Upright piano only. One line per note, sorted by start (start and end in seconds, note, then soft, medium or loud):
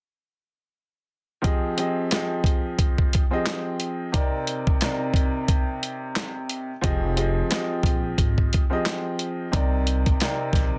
1.42 1.74 F3 medium
1.42 1.75 C4 medium
1.42 1.75 G4 medium
1.42 1.76 G#4 medium
1.42 1.76 D#5 loud
1.77 2.09 F3 medium
1.77 2.09 C4 medium
1.77 2.10 G4 medium
1.77 2.10 G#4 medium
1.77 2.10 D#5 loud
2.11 3.21 F3 medium
2.11 3.21 C4 medium
2.11 3.22 G4 medium
2.11 3.22 G#4 medium
2.11 3.22 D#5 medium
3.31 4.08 F3 medium
3.31 4.08 C4 medium
3.31 4.08 G4 medium
3.31 4.09 G#4 medium
3.31 4.09 D#5 loud
4.12 4.76 C3 medium
4.12 4.76 C4 medium
4.12 4.77 D#4 medium
4.12 4.77 A#4 medium
4.12 4.77 D5 loud
4.81 6.70 C3 medium
4.81 6.70 C4 medium
4.81 6.70 D#4 medium
4.81 6.71 A#4 medium
4.81 6.71 D5 medium
6.81 7.14 F3 loud
6.81 7.14 C4 medium
6.81 7.15 G4 medium
6.81 7.15 G#4 medium
6.81 7.15 D#5 loud
7.16 7.48 F3 medium
7.16 7.49 C4 medium
7.16 7.49 G4 medium
7.16 7.49 G#4 medium
7.16 7.50 D#5 loud
7.50 8.60 F3 medium
7.50 8.61 C4 medium
7.50 8.61 G4 medium
7.50 8.61 G#4 medium
7.50 8.62 D#5 loud
8.70 9.47 F3 medium
8.70 9.47 C4 medium
8.70 9.48 G4 medium
8.70 9.48 G#4 medium
8.70 9.48 D#5 loud
9.52 10.15 C3 medium
9.52 10.16 C4 medium
9.52 10.16 D#4 medium
9.52 10.16 A#4 medium
9.52 10.17 D5 loud
10.20 10.79 C3 loud
10.20 10.79 C4 medium
10.20 10.79 D#4 medium
10.20 10.79 A#4 medium
10.20 10.79 D5 medium